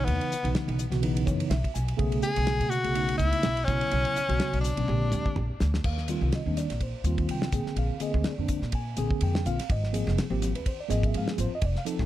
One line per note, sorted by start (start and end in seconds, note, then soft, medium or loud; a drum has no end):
0.00 0.34 C#3 medium
0.00 0.34 E3 medium
0.00 0.35 B3 medium
0.00 0.35 D#4 medium
0.05 0.19 E2 medium
0.05 0.54 B3 medium
0.05 ride medium
0.21 ride medium
0.32 muted upright bass stroke soft
0.32 hi-hat pedal medium
0.42 0.53 B1 medium
0.42 0.84 C#3 medium
0.42 0.84 E3 medium
0.42 0.84 B3 medium
0.42 0.85 D#4 medium
0.42 ride medium
0.55 snare loud
0.55 ride medium
0.68 0.89 B1 medium
0.68 ride soft
0.79 hi-hat pedal medium
0.90 1.22 B1 medium
0.90 1.00 C#3 medium
0.90 1.00 E3 medium
0.90 1.01 B3 medium
0.90 1.01 F#4 loud
0.90 snare soft
0.90 ride medium
1.01 1.55 C#3 medium
1.01 1.55 E3 medium
1.01 1.55 B3 medium
1.01 1.55 D#4 medium
1.01 ride medium
1.17 ride medium
1.26 1.39 F#2 medium
1.26 1.49 C#5 medium
1.26 kick medium
1.26 hi-hat pedal medium
1.40 ride medium
1.50 1.62 B1 loud
1.50 1.73 E5 medium
1.50 snare loud
1.50 ride medium
1.63 1.69 B3 soft
1.63 1.70 F#4 soft
1.63 kick medium
1.63 ride medium
1.74 1.97 B1 medium
1.74 1.97 G#5 medium
1.74 hi-hat pedal medium
1.88 ride medium
1.97 2.20 B1 medium
1.97 2.30 C#3 loud
1.97 2.30 A3 loud
1.97 2.31 B3 loud
1.97 2.31 G#4 loud
1.97 kick loud
1.97 ride medium
2.12 ride medium
2.22 2.71 G#4 medium
2.22 hi-hat pedal medium
2.36 2.61 B1 loud
2.36 2.77 C#3 medium
2.36 2.77 A3 medium
2.36 2.77 B3 medium
2.36 2.78 G#4 medium
2.36 ride medium
2.47 snare loud
2.47 ride medium
2.60 2.82 B2 medium
2.60 ride medium
2.70 3.17 F#4 medium
2.70 hi-hat pedal medium
2.84 3.15 B1 medium
2.84 2.93 C#3 medium
2.84 2.94 A3 medium
2.84 2.94 B3 medium
2.84 2.94 G#4 medium
2.84 ride medium
2.94 3.47 C#3 medium
2.94 3.47 A3 medium
2.94 3.48 B3 medium
2.94 3.48 D#4 medium
2.94 ride medium
3.09 ride medium
3.18 3.32 C#2 medium
3.18 3.66 E4 loud
3.18 kick medium
3.18 hi-hat pedal medium
3.32 ride medium
3.43 3.65 B1 loud
3.43 snare loud
3.43 ride medium
3.56 3.62 B3 soft
3.56 3.62 F#4 soft
3.56 ride medium
3.64 3.80 B1 loud
3.64 4.20 C#3 medium
3.64 4.20 F#3 medium
3.64 4.20 B3 medium
3.64 4.61 C#4 medium
3.64 kick loud
3.64 hi-hat pedal medium
3.69 4.21 E4 medium
3.81 ride medium
3.91 4.04 B1 loud
3.91 ride medium
4.05 ride soft
4.16 muted upright bass stroke soft
4.16 hi-hat pedal medium
4.28 4.39 B1 medium
4.28 4.69 C#3 medium
4.28 4.70 F#3 medium
4.28 4.70 B3 medium
4.28 4.70 F#4 medium
4.28 ride medium
4.40 snare loud
4.40 ride medium
4.53 4.74 B1 medium
4.53 ride medium
4.61 5.55 D4 medium
4.61 hi-hat pedal medium
4.76 4.87 B1 medium
4.76 4.86 C#3 medium
4.76 4.87 F#3 medium
4.76 4.87 B3 medium
4.76 4.87 C#4 medium
4.76 ride medium
4.87 5.10 A#1 loud
4.87 5.40 D3 medium
4.87 5.40 G#3 medium
4.87 5.40 C4 medium
4.87 5.40 G4 medium
4.87 high tom medium
5.12 5.24 D2 medium
5.12 hi-hat pedal medium
5.12 mid tom medium
5.26 kick medium
5.36 5.48 A#1 medium
5.36 mid tom medium
5.49 5.54 C4 soft
5.49 5.55 G4 soft
5.60 5.82 D2 medium
5.60 snare medium
5.60 hi-hat pedal medium
5.74 snare medium
5.84 6.18 D#2 medium
5.84 6.30 F5 medium
5.84 kick medium
5.84 crash medium
5.97 snare soft
6.08 6.40 D#3 medium
6.08 6.41 G3 medium
6.08 6.41 C4 medium
6.08 6.41 F4 medium
6.08 hi-hat pedal medium
6.08 ride medium
6.21 6.31 C2 medium
6.32 6.57 D#5 medium
6.32 snare medium
6.32 ride medium
6.46 6.67 D#2 medium
6.46 6.66 D#3 medium
6.46 6.66 G3 medium
6.46 6.67 C4 medium
6.46 6.67 D4 medium
6.57 6.80 D5 medium
6.57 snare soft
6.57 hi-hat pedal medium
6.57 ride medium
6.70 6.92 A#1 medium
6.70 6.75 C4 soft
6.70 6.76 F4 soft
6.70 snare soft
6.70 ride medium
6.81 6.87 C4 soft
6.81 6.88 D#4 soft
6.81 7.27 C5 medium
6.81 kick medium
6.81 ride medium
7.04 7.26 D#2 medium
7.04 7.47 D#3 medium
7.04 7.47 G3 medium
7.04 7.48 C4 medium
7.04 7.48 F4 loud
7.04 hi-hat pedal medium
7.04 ride soft
7.18 kick medium
7.18 ride medium
7.28 7.40 C2 medium
7.28 7.75 G5 medium
7.28 ride medium
7.42 snare medium
7.52 7.65 A#1 medium
7.52 7.95 D3 medium
7.52 7.95 A#3 medium
7.52 7.95 C4 medium
7.52 7.96 G#4 medium
7.52 kick medium
7.52 hi-hat pedal medium
7.52 ride medium
7.65 muted upright bass stroke soft
7.65 snare soft
7.76 7.88 A#1 medium
7.76 8.01 F5 medium
7.76 ride medium
8.00 8.32 D3 medium
8.00 8.33 A#3 medium
8.00 8.33 C4 medium
8.00 8.33 G#4 medium
8.00 8.25 D#5 medium
8.00 muted upright bass stroke soft
8.00 hi-hat pedal medium
8.00 ride medium
8.14 8.24 D2 medium
8.14 kick medium
8.24 8.71 D5 medium
8.24 muted upright bass stroke soft
8.24 snare loud
8.24 ride medium
8.38 8.60 F2 medium
8.38 8.59 D3 medium
8.38 8.59 A#3 medium
8.38 8.59 C4 medium
8.38 8.60 D4 medium
8.48 kick medium
8.48 hi-hat pedal medium
8.48 ride medium
8.62 8.93 A#2 medium
8.62 8.68 C4 soft
8.62 8.68 G#4 soft
8.62 snare soft
8.72 8.79 C4 soft
8.72 8.80 G#4 soft
8.72 9.19 G#5 medium
8.72 kick medium
8.72 ride medium
8.97 9.09 A#1 medium
8.97 9.39 D3 medium
8.97 9.39 A#3 medium
8.97 9.40 C4 medium
8.97 9.40 G#4 loud
8.97 hi-hat pedal medium
8.97 ride medium
9.11 kick medium
9.21 9.47 F2 medium
9.21 9.46 G5 medium
9.21 ride medium
9.35 snare loud
9.45 9.57 A#1 medium
9.45 9.57 D3 medium
9.45 9.57 A#3 medium
9.45 9.57 C4 medium
9.45 9.57 F4 medium
9.45 9.69 F5 loud
9.45 hi-hat pedal medium
9.45 ride medium
9.59 9.64 C4 soft
9.59 9.64 G#4 soft
9.59 snare soft
9.59 ride medium
9.70 10.03 G#1 medium
9.70 10.15 D#5 medium
9.70 kick loud
9.70 ride medium
9.84 snare soft
9.92 10.25 F3 medium
9.92 10.25 A#3 medium
9.92 10.25 C4 medium
9.92 10.25 G#4 medium
9.92 hi-hat pedal medium
9.92 ride medium
10.07 10.16 F1 loud
10.07 snare soft
10.18 snare medium
10.18 ride medium
10.30 10.52 G#1 medium
10.30 10.51 F3 medium
10.30 10.51 A#3 medium
10.30 10.51 C4 medium
10.30 10.51 G4 medium
10.42 snare soft
10.42 hi-hat pedal medium
10.42 ride medium
10.54 10.76 D#2 medium
10.54 10.60 C4 soft
10.54 10.60 G#4 soft
10.54 10.66 B4 medium
10.54 ride medium
10.64 10.71 C4 soft
10.64 10.72 G#4 soft
10.64 10.79 C5 medium
10.64 kick medium
10.64 ride medium
10.80 10.90 D5 medium
10.88 11.11 G#1 medium
10.88 11.31 F3 medium
10.88 11.31 A#3 medium
10.88 11.32 C4 medium
10.88 11.29 G#4 loud
10.88 11.03 D#5 medium
10.88 hi-hat pedal medium
10.88 ride medium
11.03 11.15 E5 medium
11.03 kick medium
11.03 ride medium
11.14 11.26 G#2 medium
11.14 11.29 F5 medium
11.14 ride medium
11.28 11.39 G#4 medium
11.28 snare loud
11.37 11.50 G#1 medium
11.37 11.49 F3 medium
11.37 11.49 A#3 medium
11.37 11.49 C4 medium
11.37 11.49 F4 medium
11.37 hi-hat pedal medium
11.37 ride medium
11.41 11.52 C5 loud
11.50 11.56 C4 soft
11.50 11.56 F4 soft
11.50 muted upright bass stroke soft
11.55 11.63 D#5 medium
11.62 11.74 F1 medium
11.62 11.76 D5 medium
11.62 kick medium
11.62 ride medium
11.76 11.83 F5 medium
11.76 snare soft
11.85 12.06 F3 medium
11.85 12.06 C4 medium
11.85 12.06 D#4 medium
11.85 12.06 A4 medium
11.85 hi-hat pedal medium
11.85 ride medium
11.99 12.06 A1 loud
11.99 kick medium
11.99 snare soft